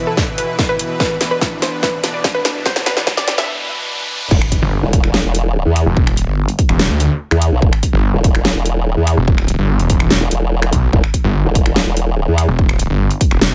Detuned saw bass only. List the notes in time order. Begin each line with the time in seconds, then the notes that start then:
4.62 G1
5.86 E1
6.28 G1
6.69 E1
6.90 D2
7.93 G1
9.17 E1
9.59 G1
9.79 E1
10.73 B1
11.24 G1
12.48 E1
12.90 G1
13.31 E1